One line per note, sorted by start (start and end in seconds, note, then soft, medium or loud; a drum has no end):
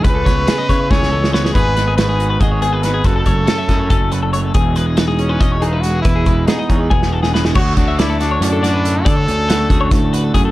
0.00 1.11 C#3 medium
0.00 0.26 G#3 medium
0.00 0.70 G#4 medium
0.00 0.92 B4 loud
0.04 0.24 C#2 medium
0.04 0.14 B4 medium
0.04 kick medium
0.04 closed hi-hat medium
0.15 0.26 A4 medium
0.25 0.46 C#2 medium
0.25 1.33 B3 medium
0.25 0.47 C#5 medium
0.25 kick medium
0.25 snare soft
0.25 closed hi-hat medium
0.47 0.90 C#4 medium
0.47 0.58 G#4 medium
0.47 snare loud
0.47 closed hi-hat medium
0.58 0.69 D#5 medium
0.69 0.89 C#3 medium
0.69 1.55 E4 medium
0.69 0.80 C#5 medium
0.69 kick medium
0.69 closed hi-hat medium
0.80 0.90 B4 medium
0.91 1.51 C#2 medium
0.91 1.53 C#4 medium
0.91 1.12 G#4 medium
0.91 1.32 C#5 loud
0.91 kick medium
0.91 snare soft
1.03 snare soft
1.12 1.52 E3 medium
1.12 1.23 A4 medium
1.23 1.33 G#4 medium
1.23 snare medium
1.33 1.53 B3 medium
1.33 1.44 B4 medium
1.33 1.53 C#5 medium
1.33 snare medium
1.45 1.55 G#4 medium
1.45 snare medium
1.54 2.37 G#1 medium
1.54 3.02 G#2 medium
1.54 2.61 B3 medium
1.54 1.76 D#4 medium
1.54 1.97 F#4 medium
1.54 1.76 G#4 medium
1.54 1.94 B4 loud
1.54 kick loud
1.54 closed hi-hat medium
1.77 2.84 D#4 medium
1.77 1.87 B4 medium
1.77 snare soft
1.77 closed hi-hat medium
1.88 1.97 G#4 medium
1.97 2.19 F#4 medium
1.97 2.42 B4 loud
1.97 2.08 B4 medium
1.97 snare loud
1.97 closed hi-hat medium
2.09 2.30 G#4 medium
2.20 2.40 F#4 medium
2.20 closed hi-hat soft
2.30 2.41 B4 medium
2.40 3.01 G#1 medium
2.40 3.02 F#4 medium
2.40 2.62 G#4 medium
2.40 2.52 D#5 medium
2.40 kick loud
2.40 closed hi-hat medium
2.52 2.62 C#5 medium
2.62 3.02 B3 medium
2.62 2.73 G#4 medium
2.62 2.85 G#4 medium
2.62 closed hi-hat medium
2.73 2.94 B4 medium
2.83 3.03 D#4 medium
2.83 3.07 B4 medium
2.83 snare soft
2.83 closed hi-hat medium
2.94 3.05 G#4 medium
3.04 3.24 F#1 medium
3.04 4.53 F#2 medium
3.04 4.34 A4 medium
3.04 3.16 B4 medium
3.04 kick loud
3.04 closed hi-hat medium
3.16 3.26 A4 medium
3.26 3.46 F#1 medium
3.26 4.32 A3 medium
3.26 3.48 C#5 medium
3.26 kick medium
3.26 closed hi-hat medium
3.47 3.90 C#4 medium
3.47 3.58 A4 medium
3.47 snare loud
3.47 closed hi-hat medium
3.58 3.69 E5 medium
3.69 3.88 F#2 medium
3.69 5.19 E4 medium
3.69 3.80 D#5 medium
3.69 kick medium
3.69 snare soft
3.69 closed hi-hat medium
3.80 3.90 C#5 medium
3.90 4.51 F#1 medium
3.90 4.53 C#4 medium
3.90 4.12 A4 medium
3.90 kick loud
3.90 closed hi-hat medium
4.12 4.52 F#3 medium
4.12 4.22 B4 medium
4.12 closed hi-hat medium
4.23 4.33 A4 medium
4.33 4.52 A3 medium
4.33 4.44 C#5 medium
4.33 closed hi-hat medium
4.44 4.54 A4 medium
4.54 5.37 E1 medium
4.54 6.05 E2 medium
4.54 4.76 G#4 medium
4.54 kick loud
4.54 closed hi-hat medium
4.76 5.84 G#3 medium
4.76 4.86 B4 medium
4.76 closed hi-hat medium
4.86 4.97 G#4 medium
4.97 5.39 D#4 medium
4.97 5.07 B4 medium
4.97 snare loud
4.97 closed hi-hat medium
5.08 5.29 G#4 medium
5.19 5.59 C#4 medium
5.19 6.03 G#4 medium
5.19 closed hi-hat medium
5.29 5.40 B4 medium
5.40 6.01 E1 medium
5.40 6.03 D#4 medium
5.40 5.52 D#5 medium
5.40 kick loud
5.40 closed hi-hat medium
5.52 5.62 C#5 medium
5.60 6.03 E3 medium
5.60 5.83 D#4 medium
5.60 5.73 G#4 medium
5.60 closed hi-hat medium
5.73 5.94 B4 medium
5.81 6.01 F#4 medium
5.81 closed hi-hat medium
5.85 6.03 G#3 medium
5.94 6.05 G#4 medium
6.02 6.25 E1 medium
6.02 7.56 E2 medium
6.02 6.48 E4 medium
6.02 6.15 B4 medium
6.02 kick loud
6.02 closed hi-hat medium
6.16 6.26 G#4 medium
6.26 6.46 E1 medium
6.26 7.35 G#3 medium
6.26 6.48 B4 medium
6.26 kick medium
6.26 closed hi-hat soft
6.46 6.91 B3 medium
6.46 6.95 D#4 medium
6.46 6.59 G#4 medium
6.46 snare loud
6.46 closed hi-hat medium
6.59 6.70 D#5 medium
6.70 6.89 E2 medium
6.70 7.53 G#4 medium
6.70 6.80 C#5 medium
6.70 kick medium
6.70 closed hi-hat medium
6.80 6.90 B4 medium
6.90 7.52 E1 medium
6.90 7.56 B3 medium
6.90 7.12 G#4 medium
6.90 kick medium
6.90 high tom soft
7.03 snare medium
7.12 7.54 E3 medium
7.12 7.22 A4 medium
7.23 7.34 G#4 medium
7.23 snare medium
7.34 7.54 G#3 soft
7.34 7.45 B4 medium
7.34 snare medium
7.45 7.55 G#4 medium
7.45 snare medium
7.55 7.75 D2 medium
7.55 9.05 D3 medium
7.55 7.76 F#4 medium
7.55 7.77 C#5 medium
7.55 kick loud
7.55 crash loud
7.77 8.37 D2 medium
7.77 7.99 D4 medium
7.77 8.01 F#4 medium
7.77 7.88 A4 medium
7.77 kick medium
7.77 closed hi-hat medium
7.88 7.98 E5 medium
7.99 9.03 D4 medium
7.99 8.20 E4 loud
7.99 8.09 D5 medium
7.99 snare loud
7.99 closed hi-hat medium
8.10 8.31 A4 medium
8.20 8.40 D4 medium
8.20 8.62 F#4 medium
8.20 snare soft
8.20 closed hi-hat medium
8.31 8.42 C#5 medium
8.41 9.01 F#2 medium
8.41 9.05 A2 medium
8.41 9.08 D4 medium
8.41 8.53 D5 medium
8.41 snare soft
8.41 closed hi-hat loud
8.53 8.63 A4 medium
8.63 9.49 F#4 medium
8.63 8.73 D5 medium
8.63 snare soft
8.63 closed hi-hat medium
8.73 8.95 B4 medium
8.85 10.34 A3 medium
8.85 closed hi-hat medium
8.95 9.06 A4 medium
9.05 10.51 D3 medium
9.05 9.26 D3 loud
9.05 9.91 A4 loud
9.05 9.16 D5 medium
9.05 kick loud
9.05 closed hi-hat medium
9.16 9.27 C#5 medium
9.27 9.67 D2 medium
9.27 10.51 C#4 medium
9.27 9.49 A4 medium
9.27 closed hi-hat medium
9.49 9.71 F#4 medium
9.49 9.60 B4 medium
9.49 snare loud
9.49 closed hi-hat medium
9.60 9.71 A4 medium
9.70 9.90 D2 medium
9.70 10.13 F#4 medium
9.70 9.80 G#4 medium
9.70 kick medium
9.70 closed hi-hat medium
9.81 9.91 C#5 medium
9.91 10.30 D2 medium
9.91 10.51 A2 medium
9.91 10.13 A4 medium
9.91 kick loud
9.91 snare soft
9.91 closed hi-hat medium
10.13 10.51 F#4 medium
10.13 10.24 B4 medium
10.13 closed hi-hat medium
10.24 10.34 A4 medium
10.34 10.51 F#2 loud
10.34 10.51 A3 medium
10.34 10.45 G#4 medium
10.34 kick medium
10.34 closed hi-hat medium
10.45 10.51 A4 medium